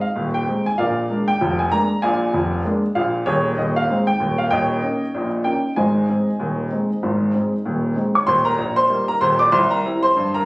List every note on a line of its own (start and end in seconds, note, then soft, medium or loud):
0.01 0.27 F5 medium
0.16 0.42 D#1 medium
0.16 0.42 D#2 medium
0.34 0.64 G5 medium
0.48 0.65 G#3 soft
0.48 0.65 C4 soft
0.48 0.65 D#4 soft
0.66 0.79 G#5 medium
0.78 1.05 A#1 medium
0.78 1.05 A#2 medium
0.78 1.25 A#4 medium
0.78 1.25 D5 medium
0.78 1.25 F5 medium
1.10 1.27 G#3 soft
1.10 1.27 A#3 soft
1.10 1.28 D4 medium
1.28 1.53 G5 medium
1.41 1.67 F1 medium
1.41 1.67 F2 medium
1.59 1.72 G#5 medium
1.72 1.89 G#3 soft
1.72 1.89 A#3 soft
1.72 1.90 D4 medium
1.72 1.97 A#5 loud
2.02 2.28 A#1 medium
2.02 2.28 A#2 medium
2.02 2.61 D5 medium
2.02 2.61 F5 medium
2.02 2.52 G#5 medium
2.33 2.59 F1 medium
2.33 2.59 F2 medium
2.65 2.82 G#3 medium
2.65 2.82 A#3 medium
2.65 2.82 D4 medium
2.95 3.21 A#1 medium
2.95 3.21 A#2 medium
2.95 3.25 F5 medium
3.26 3.52 D#1 medium
3.26 3.52 D#2 medium
3.26 3.56 G#4 medium
3.26 3.51 C#5 medium
3.58 3.83 D#1 medium
3.58 3.84 D#2 medium
3.58 3.76 D#5 medium
3.76 4.01 F5 medium
3.90 4.07 G#3 soft
3.90 4.07 C4 medium
3.90 4.07 D#4 medium
4.07 4.37 G5 medium
4.20 4.45 D#1 medium
4.20 4.45 D#2 medium
4.38 4.52 F5 medium
4.51 4.78 D#1 medium
4.51 4.78 D#2 medium
4.51 5.42 C#5 medium
4.51 5.42 D#5 medium
4.51 5.26 G5 loud
4.83 5.00 A#3 soft
4.83 5.01 C#4 soft
4.83 5.01 D#4 soft
5.14 5.41 A#1 medium
5.14 5.41 A#2 medium
5.44 5.62 A#3 soft
5.44 5.63 C#4 soft
5.44 5.63 D#4 soft
5.44 5.70 G5 medium
5.76 6.04 G#1 medium
5.76 6.04 G#2 medium
5.76 7.93 C5 medium
5.76 7.93 D#5 medium
5.76 7.52 G#5 medium
6.09 6.26 G#3 soft
6.09 6.26 C4 soft
6.09 6.27 D#4 soft
6.40 6.66 D#1 medium
6.40 6.66 D#2 medium
6.71 6.89 G#3 soft
6.71 6.89 C4 soft
6.71 6.89 D#4 soft
7.03 7.30 G#1 medium
7.03 7.29 G#2 medium
7.34 7.52 G#3 soft
7.34 7.52 C4 soft
7.34 7.52 D#4 soft
7.65 7.92 D#1 medium
7.65 7.92 D#2 medium
7.96 8.13 G#3 soft
7.96 8.14 C4 soft
7.96 8.14 D#4 soft
8.15 8.28 C#5 medium
8.15 8.28 C#6 medium
8.27 8.53 D#1 medium
8.27 8.53 D#2 medium
8.27 8.45 C5 medium
8.27 8.46 C6 loud
8.45 8.75 A#4 medium
8.45 8.71 A#5 loud
8.58 8.84 A#1 medium
8.76 9.06 C5 medium
8.76 9.02 C6 loud
8.89 9.07 G3 medium
8.89 9.07 A#3 medium
8.89 9.07 D#4 medium
9.08 9.22 A#4 medium
9.08 9.22 A#5 loud
9.21 9.46 D#1 loud
9.21 9.46 D#2 medium
9.21 9.39 C5 medium
9.21 9.40 C6 loud
9.39 9.52 D5 medium
9.39 9.53 D6 loud
9.52 9.79 C2 loud
9.52 9.70 C5 medium
9.52 9.71 C6 loud
9.71 10.01 A#4 medium
9.71 10.01 A#5 medium
9.85 10.02 G3 medium
9.85 10.02 C4 medium
9.85 10.03 E4 medium
10.03 10.32 C5 medium
10.03 10.28 C6 loud
10.16 10.43 G2 loud
10.34 10.45 A#4 medium
10.34 10.45 A#5 loud